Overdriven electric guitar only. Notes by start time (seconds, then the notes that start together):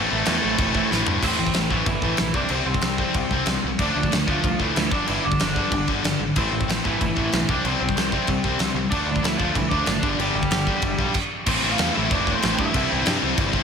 Already playing: A3
0.00 A4
1.24 C4 C5
1.71 E3 E4
1.86 E3 E4
2.35 D4 D5
2.51 C4 C5
2.67 C4 C5
3.80 D4 D5
4.28 F3 F4
4.44 F3 F4
4.59 E3 E4
4.76 E3 E4
4.91 D4 D5
5.08 E3 E4
5.25 D4 D5
6.38 C4 C5
6.85 E3 E4
7.03 E3 E4
7.50 D4 D5
7.65 C4 C5
7.80 C4 C5
8.90 D4 D5
9.23 E3 E4
9.38 F3 F4
9.54 E3 E4
9.68 D4 D5
9.86 D4 D5
10.19 G3 G4
11.48 C4 C5
11.70 F4 F5
11.94 E4 E5
12.10 D4 D5
12.32 C4 C5
12.39 C5
12.44 C4
12.58 E4 E5